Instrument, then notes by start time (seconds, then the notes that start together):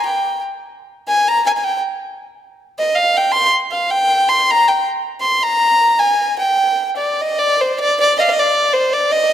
fiddle
0.06 G5
1.08 G#5
1.28 A#5
1.46 G#5
1.57 G#5
1.64 G5
2.79 D#5
2.95 F5
3.17 G5
3.32 C6
3.71 F5
3.90 G5
4.29 C6
4.50 A#5
4.68 G5
5.21 C6
5.43 A#5
5.99 G#5
6.39 G5
6.97 D5
7.21 D#5
7.38 D5
7.61 C5
7.80 D5
8.00 D5
8.18 D#5 F5
8.29 D#5
8.39 D5
8.73 C5
8.93 D5
9.12 D#5